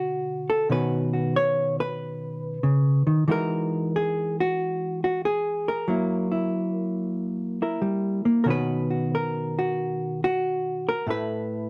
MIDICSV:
0, 0, Header, 1, 2, 480
1, 0, Start_track
1, 0, Tempo, 647948
1, 514, Time_signature, 4, 2, 24, 8
1, 8664, End_track
2, 0, Start_track
2, 0, Title_t, "Hollow-body jazz guitar"
2, 0, Program_c, 0, 26
2, 0, Note_on_c, 0, 47, 63
2, 0, Note_on_c, 0, 50, 43
2, 0, Note_on_c, 0, 61, 45
2, 0, Note_on_c, 0, 66, 79
2, 367, Note_on_c, 0, 69, 82
2, 493, Note_off_c, 0, 47, 0
2, 495, Note_off_c, 0, 50, 0
2, 499, Note_off_c, 0, 61, 0
2, 515, Note_on_c, 0, 47, 65
2, 518, Note_off_c, 0, 66, 0
2, 519, Note_off_c, 0, 69, 0
2, 520, Note_on_c, 0, 51, 45
2, 525, Note_on_c, 0, 61, 47
2, 530, Note_on_c, 0, 66, 41
2, 533, Note_on_c, 0, 71, 92
2, 837, Note_off_c, 0, 66, 0
2, 840, Note_on_c, 0, 66, 43
2, 1003, Note_off_c, 0, 71, 0
2, 1010, Note_on_c, 0, 73, 99
2, 1325, Note_off_c, 0, 73, 0
2, 1335, Note_on_c, 0, 71, 86
2, 1948, Note_off_c, 0, 51, 0
2, 1951, Note_on_c, 0, 49, 58
2, 2269, Note_off_c, 0, 49, 0
2, 2272, Note_on_c, 0, 51, 60
2, 2415, Note_off_c, 0, 47, 0
2, 2419, Note_off_c, 0, 61, 0
2, 2424, Note_off_c, 0, 51, 0
2, 2427, Note_on_c, 0, 52, 68
2, 2433, Note_on_c, 0, 56, 44
2, 2438, Note_on_c, 0, 63, 44
2, 2439, Note_off_c, 0, 66, 0
2, 2442, Note_off_c, 0, 71, 0
2, 2442, Note_on_c, 0, 66, 44
2, 2455, Note_on_c, 0, 70, 101
2, 2931, Note_off_c, 0, 66, 0
2, 2934, Note_on_c, 0, 68, 89
2, 3247, Note_off_c, 0, 68, 0
2, 3263, Note_on_c, 0, 66, 84
2, 3404, Note_off_c, 0, 70, 0
2, 3725, Note_off_c, 0, 66, 0
2, 3734, Note_on_c, 0, 66, 76
2, 3882, Note_off_c, 0, 66, 0
2, 3891, Note_on_c, 0, 68, 92
2, 4210, Note_on_c, 0, 70, 85
2, 4332, Note_off_c, 0, 52, 0
2, 4336, Note_off_c, 0, 56, 0
2, 4337, Note_off_c, 0, 63, 0
2, 4354, Note_on_c, 0, 54, 67
2, 4363, Note_off_c, 0, 68, 0
2, 4363, Note_on_c, 0, 58, 44
2, 4368, Note_on_c, 0, 64, 43
2, 4670, Note_off_c, 0, 64, 0
2, 4679, Note_on_c, 0, 64, 46
2, 5636, Note_off_c, 0, 64, 0
2, 5640, Note_off_c, 0, 70, 0
2, 5645, Note_on_c, 0, 64, 39
2, 5649, Note_on_c, 0, 70, 43
2, 5788, Note_off_c, 0, 54, 0
2, 5790, Note_on_c, 0, 55, 58
2, 6105, Note_off_c, 0, 58, 0
2, 6111, Note_off_c, 0, 55, 0
2, 6114, Note_on_c, 0, 58, 58
2, 6243, Note_off_c, 0, 70, 0
2, 6252, Note_on_c, 0, 70, 66
2, 6260, Note_off_c, 0, 64, 0
2, 6263, Note_on_c, 0, 47, 60
2, 6269, Note_on_c, 0, 51, 42
2, 6273, Note_off_c, 0, 58, 0
2, 6275, Note_on_c, 0, 61, 44
2, 6280, Note_off_c, 0, 70, 0
2, 6280, Note_on_c, 0, 66, 43
2, 6299, Note_on_c, 0, 71, 92
2, 6588, Note_off_c, 0, 66, 0
2, 6597, Note_on_c, 0, 66, 42
2, 6767, Note_off_c, 0, 71, 0
2, 6777, Note_on_c, 0, 70, 78
2, 7078, Note_off_c, 0, 66, 0
2, 7101, Note_on_c, 0, 66, 76
2, 7569, Note_off_c, 0, 70, 0
2, 7570, Note_off_c, 0, 66, 0
2, 7587, Note_on_c, 0, 66, 87
2, 8064, Note_on_c, 0, 70, 95
2, 8170, Note_off_c, 0, 47, 0
2, 8173, Note_off_c, 0, 51, 0
2, 8176, Note_off_c, 0, 61, 0
2, 8197, Note_on_c, 0, 45, 69
2, 8206, Note_on_c, 0, 57, 45
2, 8208, Note_off_c, 0, 70, 0
2, 8209, Note_off_c, 0, 66, 0
2, 8214, Note_on_c, 0, 64, 43
2, 8226, Note_on_c, 0, 71, 100
2, 8664, Note_off_c, 0, 45, 0
2, 8664, Note_off_c, 0, 57, 0
2, 8664, Note_off_c, 0, 64, 0
2, 8664, Note_off_c, 0, 71, 0
2, 8664, End_track
0, 0, End_of_file